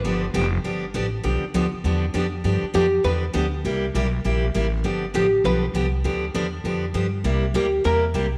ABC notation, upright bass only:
X:1
M:4/4
L:1/8
Q:"Swing" 1/4=200
K:Gmix
V:1 name="Upright bass" clef=bass
G,,,2 F,,,2 G,,,2 A,,,2 | B,,, z D,, z E,,2 F,,2 | G,, z F,,2 E,,2 D,,2 | C,,2 B,,,2 _B,,,2 A,,,2 |
G,,,2 A,,,2 B,,,2 C,,2 | D,,2 E,,2 F,,2 G,,2 | C,,2 D,,2 E,,2 C,,2 |]